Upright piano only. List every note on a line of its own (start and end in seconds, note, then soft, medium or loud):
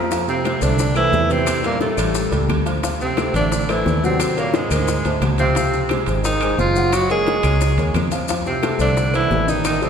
0.11 0.39 F3 medium
0.11 0.39 F4 medium
0.11 0.39 F5 medium
0.44 0.59 A3 medium
0.44 0.59 A4 medium
0.44 0.59 C5 medium
0.62 0.90 A3 medium
0.62 0.90 A4 medium
0.62 0.90 C5 medium
0.95 1.23 A3 medium
0.95 1.24 A4 medium
0.95 1.24 C5 medium
1.29 1.58 E3 medium
1.29 1.58 E4 medium
1.29 1.58 E5 medium
1.64 1.92 G3 medium
1.64 1.92 G4 medium
1.64 1.92 A#4 medium
1.97 2.26 G3 medium
1.97 2.26 G4 medium
1.97 2.26 A4 medium
2.31 2.60 G3 medium
2.31 2.60 G4 medium
2.31 2.60 A4 medium
2.66 2.80 F3 medium
2.66 2.80 F4 medium
2.66 2.80 F5 medium
2.83 3.11 F3 medium
2.83 3.11 F4 medium
2.83 3.12 F5 medium
3.17 3.31 A3 medium
3.17 3.31 A4 medium
3.17 3.32 C5 medium
3.36 3.63 A3 medium
3.36 3.64 A4 medium
3.36 3.64 C5 medium
3.69 3.97 A3 medium
3.69 3.97 A4 medium
3.69 3.97 C5 medium
4.03 4.31 F#3 medium
4.03 4.31 F#4 medium
4.03 4.31 F#5 medium
4.37 4.65 A#3 medium
4.37 4.65 A#4 medium
4.37 4.65 C#5 medium
4.71 4.99 A#3 medium
4.71 4.99 A#4 medium
4.71 4.99 C5 medium
5.05 5.33 A3 medium
5.05 5.33 A4 medium
5.05 5.33 C5 medium
5.39 5.53 F3 medium
5.39 5.54 F4 medium
5.39 5.54 F5 medium
5.55 5.84 F3 medium
5.55 5.84 F4 medium
5.55 5.84 F5 medium
5.90 6.04 G#3 medium
5.90 6.04 G#4 medium
5.90 6.04 C5 medium
6.07 6.35 G#3 medium
6.07 6.35 G#4 medium
6.07 6.36 C5 medium
6.42 6.70 G#3 medium
6.42 6.70 G#4 medium
6.42 6.70 C5 medium
6.76 7.04 F#3 medium
6.76 7.04 F#4 medium
6.76 7.04 F#5 medium
7.10 7.38 A#3 medium
7.10 7.38 A#4 medium
7.10 7.38 C#5 medium
7.44 7.72 A#3 medium
7.44 7.72 A#4 medium
7.44 7.73 C#5 medium
7.78 8.06 A#3 medium
7.78 8.07 A#4 medium
7.78 8.06 C#5 medium
8.11 8.26 F3 medium
8.11 8.26 F4 medium
8.11 8.26 F5 medium
8.29 8.57 F3 medium
8.29 8.57 F4 medium
8.29 8.57 F5 medium
8.62 8.76 A3 medium
8.62 8.77 A4 medium
8.62 8.77 C5 medium
8.78 9.07 A3 medium
8.78 9.07 A4 medium
8.78 9.07 C5 medium
9.13 9.41 A3 medium
9.13 9.41 A4 medium
9.13 9.42 C5 medium
9.46 9.75 D#3 medium
9.46 9.76 D#4 medium
9.46 9.76 D#5 medium
9.82 9.89 G3 medium
9.82 9.89 G4 medium
9.82 9.89 A4 medium